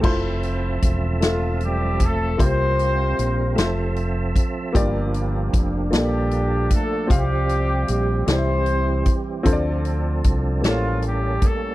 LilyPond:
<<
  \new Staff \with { instrumentName = "Upright piano" } { \time 6/8 \key f \major \tempo 4. = 51 <a e' f' c''>4 r8 <a f' a' e''>4 r8 | <bes f' g' c''>4 r8 <a f' c'' e''>4 r8 | <bes f' g' d''>4 r8 <bes f' a' d''>4 r8 | <c' f' g' f''>4 r8 <c' e' g' d'' e''>4 r8 |
<c' f' a' c'' d''>4 r8 <bes g' a' cis''>4 r8 | }
  \new Staff \with { instrumentName = "Upright piano" } { \clef bass \time 6/8 \key f \major r2. | c4. r4. | g,4. bes,4. | c4. c4. |
d4. a,4. | }
  \new Staff \with { instrumentName = "Horn section" } { \time 6/8 \key f \major << { r4. <f f'>8 <g g'>8 <a a'>8 | <c' c''>2 r4 | r4. <g g'>4 <a a'>8 | <g g'>4 <g g'>8 <c' c''>4 r8 |
r4. <f f'>8 <g g'>8 <a a'>8 | } \\ { r2. | <f' g'>2 r4 | r4. d'4. | c'4. <e' g'>4. |
r4. <bes cis'>4. | } >> }
  \new Staff \with { instrumentName = "Tonewheel organ" } { \time 6/8 \key f \major <f c' aes' a' e''>2. | <g c' f' bes'>4. <f c' g' a' e''>4. | <f bes d' g'>4. <f bes d' a'>4. | <f g c' g'>4. <e g c' g'>4. |
<f c' d' aes' a'>4. <g bes cis' a'>4. | }
  \new Staff \with { instrumentName = "Fingered electric bass" } { \clef bass \time 6/8 \key f \major f,,4 e,,2 | c,4 bes,,8 f,,4 r8 | g,,4 f,,8 bes,,4 r8 | c,4 bes,,8 c,4 r8 |
d,4 c,8 a,,4 r8 | }
  \new DrumStaff \with { instrumentName = "Drums" } \drummode { \time 6/8 <cymc bd>8 hh8 <hh bd>8 <hh sn>8 hh8 <hh bd>8 | <hh bd>8 hh8 hh8 <hh sn>8 hh8 <hh bd>8 | <hh bd>8 hh8 <hh bd>8 <hh sn>8 hh8 <hh bd>8 | <hh bd>8 hh8 hh8 <hh sn>8 hh8 <hh bd>8 |
<hh bd>8 hh8 <hh bd>8 <hh sn>8 hh8 <hh bd>8 | }
>>